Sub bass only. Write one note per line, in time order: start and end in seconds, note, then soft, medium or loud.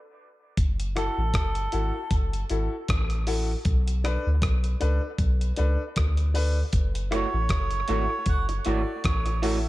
0.58 1.09 F#1 loud
1.18 1.32 A1 medium
1.34 1.68 F#1 medium
1.74 1.92 G#1 medium
2.11 2.44 F#1 loud
2.50 2.69 G#1 medium
2.89 3.55 A1 medium
3.66 4.17 B1 loud
4.27 4.41 D2 medium
4.42 4.76 B1 medium
4.82 5.00 C#2 medium
5.19 5.52 B1 loud
5.59 5.77 C#2 medium
5.97 6.63 D2 medium
6.74 7.25 F#1 loud
7.34 7.48 A1 medium
7.50 7.83 F#1 loud
7.89 8.08 G#1 medium
8.27 8.60 F#1 loud
8.66 8.85 G#1 medium
9.05 9.69 A1 medium